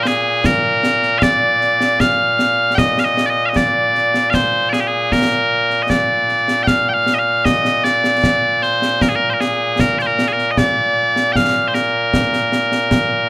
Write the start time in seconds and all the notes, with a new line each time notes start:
Already playing: A#2
0.03 C5, snare
0.07 G#4
0.44 A#4, concert bass drum, snare
0.83 snare
1.03 snare
1.19 F5, concert bass drum, snare
1.23 D5
1.61 snare
1.81 snare
2.00 F5, concert bass drum, snare
2.39 snare
2.75 D#5 G5, concert bass drum, snare
2.98 F5, snare
3.04 D#5
3.17 snare
3.26 D5 D#5
3.46 D#5 F5
3.56 D5, concert bass drum, snare
3.95 snare
4.14 snare
4.30 F5, concert bass drum, snare
4.34 C5
4.69 G#4 D5, snare
4.81 G4
4.88 G#4
5.12 A#4, concert bass drum, snare
5.70 snare
5.82 D#5
5.90 D5, concert bass drum, snare
6.29 snare
6.48 snare
6.63 F5 G5
6.67 concert bass drum, snare
6.89 G5
6.93 F5
7.06 snare
7.14 D#5
7.19 F5
7.45 D#5, concert bass drum, snare
7.65 snare
7.84 D5, snare
8.04 snare
8.24 concert bass drum, snare
8.62 C5, snare
8.82 snare
9.01 A#4, concert bass drum, snare
9.09 G#4
9.15 A#4
9.30 A#4 C5
9.40 G#4, snare
9.79 A#4, concert bass drum, snare
9.99 C5 D5, snare
10.06 A#4
10.19 snare
10.28 G#4
10.33 A#4
10.38 snare
10.51 D#5
10.57 D5, concert bass drum, snare
11.16 snare
11.33 F5 G5, concert bass drum, snare
11.68 C5
11.74 A#4, snare
12.14 concert bass drum, snare
12.33 snare
12.52 snare
12.72 snare
12.91 concert bass drum, snare